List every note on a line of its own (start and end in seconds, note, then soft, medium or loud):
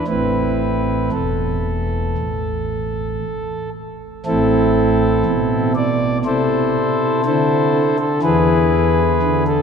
0.07 1.10 A1 medium
0.07 1.10 A2 medium
0.07 1.10 C4 soft
0.07 1.10 E4 soft
0.07 1.10 B4 medium
1.12 2.14 E1 medium
1.12 2.14 E2 medium
1.12 3.70 A4 medium
2.18 3.19 A1 medium
4.26 5.24 A1 medium
4.26 5.24 A2 medium
4.26 5.73 C4 medium
4.26 5.73 E4 medium
4.26 5.73 A4 loud
5.25 6.22 B2 medium
5.76 6.18 D5 loud
6.25 7.21 C3 medium
6.25 7.22 E4 medium
6.25 7.22 A4 medium
6.25 7.21 C5 loud
7.25 8.21 D3 medium
7.25 7.97 E4 medium
7.25 7.97 A4 medium
7.25 7.97 C5 loud
7.99 8.20 A4 loud
8.22 9.19 E2 medium
8.22 9.19 E3 medium
8.22 9.43 E4 medium
8.22 9.44 G#4 medium
8.22 9.43 B4 loud
9.22 9.62 D3 medium
9.48 9.62 A4 loud